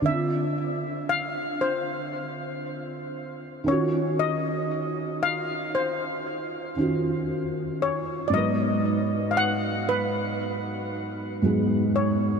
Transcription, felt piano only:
0, 0, Header, 1, 2, 480
1, 0, Start_track
1, 0, Tempo, 1034483
1, 23, Time_signature, 4, 2, 24, 8
1, 5753, End_track
2, 0, Start_track
2, 0, Title_t, "Felt piano"
2, 0, Program_c, 0, 0
2, 0, Control_c, 0, 64, 127
2, 8, Note_on_c, 0, 50, 64
2, 20, Note_on_c, 0, 60, 58
2, 28, Control_c, 0, 64, 0
2, 31, Note_on_c, 0, 62, 56
2, 43, Note_on_c, 0, 65, 71
2, 123, Control_c, 0, 64, 127
2, 1677, Note_off_c, 0, 50, 0
2, 1683, Note_off_c, 0, 60, 0
2, 1688, Note_on_c, 0, 51, 70
2, 1689, Note_off_c, 0, 62, 0
2, 1695, Note_off_c, 0, 65, 0
2, 1700, Note_on_c, 0, 61, 63
2, 1709, Control_c, 0, 64, 0
2, 1712, Note_on_c, 0, 65, 61
2, 1724, Note_on_c, 0, 66, 76
2, 1784, Control_c, 0, 64, 127
2, 3117, Note_off_c, 0, 51, 0
2, 3123, Note_off_c, 0, 61, 0
2, 3129, Note_off_c, 0, 65, 0
2, 3135, Note_off_c, 0, 66, 0
2, 3138, Note_on_c, 0, 51, 50
2, 3144, Note_on_c, 0, 61, 47
2, 3150, Note_on_c, 0, 65, 46
2, 3156, Note_on_c, 0, 66, 52
2, 3849, Note_on_c, 0, 44, 63
2, 3860, Note_on_c, 0, 54, 59
2, 3861, Note_off_c, 0, 51, 0
2, 3864, Note_off_c, 0, 61, 0
2, 3867, Note_off_c, 0, 65, 0
2, 3869, Note_off_c, 0, 66, 0
2, 3869, Control_c, 0, 64, 0
2, 3872, Note_on_c, 0, 59, 56
2, 3884, Note_on_c, 0, 71, 74
2, 3949, Control_c, 0, 64, 127
2, 5278, Note_off_c, 0, 44, 0
2, 5283, Note_off_c, 0, 54, 0
2, 5289, Note_off_c, 0, 59, 0
2, 5295, Note_off_c, 0, 71, 0
2, 5298, Note_on_c, 0, 44, 60
2, 5303, Note_on_c, 0, 54, 58
2, 5309, Note_on_c, 0, 59, 54
2, 5315, Note_on_c, 0, 68, 64
2, 5753, Note_off_c, 0, 44, 0
2, 5753, Note_off_c, 0, 54, 0
2, 5753, Note_off_c, 0, 59, 0
2, 5753, Note_off_c, 0, 68, 0
2, 5753, End_track
0, 0, End_of_file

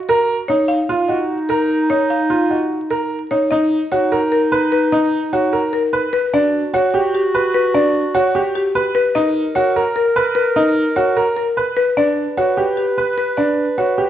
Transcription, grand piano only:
0, 0, Header, 1, 2, 480
1, 0, Start_track
1, 0, Tempo, 402685
1, 827, Time_signature, 7, 3, 24, 8
1, 16802, End_track
2, 0, Start_track
2, 0, Title_t, "Grand piano"
2, 0, Program_c, 0, 0
2, 107, Note_on_c, 0, 70, 106
2, 419, Note_off_c, 0, 70, 0
2, 589, Note_on_c, 0, 63, 79
2, 900, Note_off_c, 0, 63, 0
2, 1064, Note_on_c, 0, 65, 84
2, 1302, Note_on_c, 0, 66, 72
2, 1378, Note_off_c, 0, 65, 0
2, 1618, Note_off_c, 0, 66, 0
2, 1783, Note_on_c, 0, 70, 94
2, 2098, Note_off_c, 0, 70, 0
2, 2266, Note_on_c, 0, 63, 71
2, 2579, Note_off_c, 0, 63, 0
2, 2740, Note_on_c, 0, 65, 81
2, 2985, Note_on_c, 0, 66, 58
2, 3057, Note_off_c, 0, 65, 0
2, 3299, Note_off_c, 0, 66, 0
2, 3464, Note_on_c, 0, 70, 82
2, 3778, Note_off_c, 0, 70, 0
2, 3947, Note_on_c, 0, 63, 67
2, 4174, Note_off_c, 0, 63, 0
2, 4191, Note_on_c, 0, 63, 84
2, 4501, Note_off_c, 0, 63, 0
2, 4671, Note_on_c, 0, 66, 95
2, 4909, Note_on_c, 0, 70, 91
2, 4981, Note_off_c, 0, 66, 0
2, 5220, Note_off_c, 0, 70, 0
2, 5386, Note_on_c, 0, 71, 96
2, 5699, Note_off_c, 0, 71, 0
2, 5868, Note_on_c, 0, 63, 85
2, 6180, Note_off_c, 0, 63, 0
2, 6352, Note_on_c, 0, 66, 96
2, 6587, Note_on_c, 0, 70, 80
2, 6661, Note_off_c, 0, 66, 0
2, 6899, Note_off_c, 0, 70, 0
2, 7067, Note_on_c, 0, 71, 89
2, 7379, Note_off_c, 0, 71, 0
2, 7551, Note_on_c, 0, 62, 87
2, 7861, Note_off_c, 0, 62, 0
2, 8029, Note_on_c, 0, 66, 102
2, 8271, Note_on_c, 0, 67, 89
2, 8340, Note_off_c, 0, 66, 0
2, 8581, Note_off_c, 0, 67, 0
2, 8755, Note_on_c, 0, 71, 94
2, 9062, Note_off_c, 0, 71, 0
2, 9230, Note_on_c, 0, 62, 86
2, 9540, Note_off_c, 0, 62, 0
2, 9711, Note_on_c, 0, 66, 112
2, 9953, Note_on_c, 0, 67, 91
2, 10021, Note_off_c, 0, 66, 0
2, 10261, Note_off_c, 0, 67, 0
2, 10432, Note_on_c, 0, 71, 96
2, 10741, Note_off_c, 0, 71, 0
2, 10910, Note_on_c, 0, 63, 93
2, 11220, Note_off_c, 0, 63, 0
2, 11391, Note_on_c, 0, 66, 105
2, 11636, Note_on_c, 0, 70, 91
2, 11701, Note_off_c, 0, 66, 0
2, 11942, Note_off_c, 0, 70, 0
2, 12110, Note_on_c, 0, 71, 99
2, 12420, Note_off_c, 0, 71, 0
2, 12588, Note_on_c, 0, 63, 89
2, 12899, Note_off_c, 0, 63, 0
2, 13068, Note_on_c, 0, 66, 101
2, 13309, Note_on_c, 0, 70, 89
2, 13380, Note_off_c, 0, 66, 0
2, 13620, Note_off_c, 0, 70, 0
2, 13792, Note_on_c, 0, 71, 89
2, 14101, Note_off_c, 0, 71, 0
2, 14268, Note_on_c, 0, 62, 84
2, 14580, Note_off_c, 0, 62, 0
2, 14749, Note_on_c, 0, 66, 95
2, 14986, Note_on_c, 0, 67, 83
2, 15060, Note_off_c, 0, 66, 0
2, 15299, Note_off_c, 0, 67, 0
2, 15468, Note_on_c, 0, 71, 82
2, 15780, Note_off_c, 0, 71, 0
2, 15947, Note_on_c, 0, 62, 76
2, 16259, Note_off_c, 0, 62, 0
2, 16425, Note_on_c, 0, 66, 82
2, 16663, Note_on_c, 0, 67, 82
2, 16738, Note_off_c, 0, 66, 0
2, 16802, Note_off_c, 0, 67, 0
2, 16802, End_track
0, 0, End_of_file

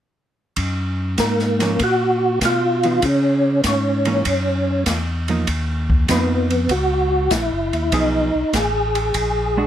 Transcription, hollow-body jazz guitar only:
0, 0, Header, 1, 2, 480
1, 0, Start_track
1, 0, Key_signature, 6, "major"
1, 0, Tempo, 612245
1, 454, Time_signature, 4, 2, 24, 8
1, 7580, End_track
2, 0, Start_track
2, 0, Title_t, "Hollow-body jazz guitar"
2, 0, Program_c, 0, 26
2, 1265, Note_on_c, 0, 53, 49
2, 1272, Note_on_c, 0, 58, 55
2, 1274, Note_on_c, 0, 61, 56
2, 1400, Note_off_c, 0, 53, 0
2, 1403, Note_off_c, 0, 58, 0
2, 1405, Note_off_c, 0, 61, 0
2, 2234, Note_on_c, 0, 52, 48
2, 2239, Note_on_c, 0, 59, 44
2, 2240, Note_on_c, 0, 63, 46
2, 2365, Note_off_c, 0, 52, 0
2, 2367, Note_off_c, 0, 59, 0
2, 2368, Note_off_c, 0, 63, 0
2, 3188, Note_on_c, 0, 52, 54
2, 3191, Note_on_c, 0, 58, 55
2, 3199, Note_on_c, 0, 61, 65
2, 3321, Note_off_c, 0, 52, 0
2, 3323, Note_off_c, 0, 58, 0
2, 3327, Note_off_c, 0, 61, 0
2, 4150, Note_on_c, 0, 53, 46
2, 4155, Note_on_c, 0, 58, 53
2, 4160, Note_on_c, 0, 63, 52
2, 4282, Note_off_c, 0, 53, 0
2, 4285, Note_off_c, 0, 58, 0
2, 4287, Note_off_c, 0, 63, 0
2, 4774, Note_on_c, 0, 53, 47
2, 4780, Note_on_c, 0, 58, 48
2, 4787, Note_on_c, 0, 63, 54
2, 5070, Note_off_c, 0, 53, 0
2, 5074, Note_off_c, 0, 58, 0
2, 5077, Note_off_c, 0, 63, 0
2, 6215, Note_on_c, 0, 53, 49
2, 6217, Note_on_c, 0, 59, 52
2, 6219, Note_on_c, 0, 63, 53
2, 6225, Note_on_c, 0, 68, 56
2, 6510, Note_off_c, 0, 53, 0
2, 6511, Note_off_c, 0, 59, 0
2, 6512, Note_off_c, 0, 63, 0
2, 6515, Note_off_c, 0, 68, 0
2, 7505, Note_on_c, 0, 56, 52
2, 7510, Note_on_c, 0, 62, 64
2, 7512, Note_on_c, 0, 66, 65
2, 7580, Note_off_c, 0, 56, 0
2, 7580, Note_off_c, 0, 62, 0
2, 7580, Note_off_c, 0, 66, 0
2, 7580, End_track
0, 0, End_of_file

